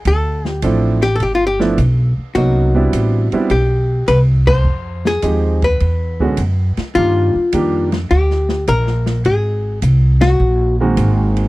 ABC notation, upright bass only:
X:1
M:4/4
L:1/8
Q:"Swing" 1/4=104
K:Eb
V:1 name="Upright bass" clef=bass
D,,2 =A,,,2 G,,,2 =B,,, z | C,,2 =A,,, z =B,,,2 C,,2 | F,,2 E,,2 =E,,2 ^F,, z | G,, z F,,2 D,,2 B,,,2 |
A,,,2 C,,2 B,,,2 A,,,2 |]